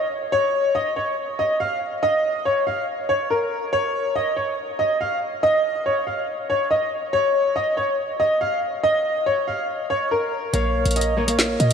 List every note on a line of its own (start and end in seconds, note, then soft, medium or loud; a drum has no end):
0.32 0.72 C#5 loud
0.75 0.92 D#5 medium
0.96 1.13 C#5 medium
1.39 1.56 D#5 medium
1.60 1.77 F5 medium
2.03 2.43 D#5 loud
2.45 2.62 C#5 medium
2.67 2.84 F5 medium
3.09 3.26 C#5 medium
3.30 3.70 A#4 medium
3.73 4.13 C#5 loud
4.15 4.32 D#5 medium
4.36 4.54 C#5 medium
4.79 4.96 D#5 medium
5.01 5.18 F5 medium
5.43 5.83 D#5 loud
5.86 6.03 C#5 medium
6.07 6.24 F5 medium
6.50 6.67 C#5 medium
6.71 6.88 D#5 medium
7.13 7.53 C#5 loud
7.56 7.73 D#5 medium
7.77 7.94 C#5 medium
8.20 8.37 D#5 medium
8.41 8.58 F5 medium
8.83 9.23 D#5 loud
9.26 9.43 C#5 medium
9.48 9.64 F5 medium
9.90 10.07 C#5 medium
10.11 10.51 A#4 medium
10.53 10.76 A#1 loud
10.53 11.16 A#3 medium
10.53 11.17 A#4 medium
10.53 10.94 C#5 loud
10.53 11.17 C#5 medium
10.53 11.28 F5 loud
10.53 closed hi-hat medium
10.75 10.85 B1 loud
10.86 11.57 A#1 loud
10.86 closed hi-hat medium
10.91 closed hi-hat medium
10.96 11.13 D#5 medium
10.96 closed hi-hat medium
11.01 closed hi-hat medium
11.17 11.25 A#3 medium
11.17 11.26 A#4 medium
11.17 11.34 C#5 medium
11.17 11.26 C#5 medium
11.17 11.26 D#5 medium
11.27 11.73 A#3 medium
11.27 11.73 A#4 medium
11.27 11.73 C#5 medium
11.27 11.73 F5 medium
11.27 closed hi-hat medium
11.39 snare loud
11.39 clap medium
11.60 11.73 A#2 loud
11.60 11.73 D#5 medium
11.60 closed hi-hat medium